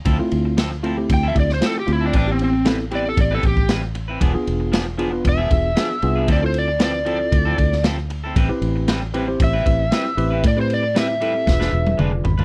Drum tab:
RD |x-x-x-x-x-x-x-x-|x-x-x-x-x-x-x-x-|x-x-x-x-x-x-x-x-|x-x-x-x-x-x-x-x-|
SD |----o------oo---|----o-------o---|----o-------o---|----o------oo---|
T1 |----------------|----------------|----------------|----------------|
T2 |----------------|----------------|----------------|----------------|
FT |----------------|----------------|----------------|----------------|
BD |o-------o-o-----|o-------o-oo----|o-------o-o-----|o-------o-o-----|

RD |x-x-x-x-x-x-x-x-|x-x-x-x---------|
SD |----o-------o---|----o---oo------|
T1 |----------------|-----------o----|
T2 |----------------|------------o---|
FT |----------------|--------------oo|
BD |o-------o-o-----|o-------o-------|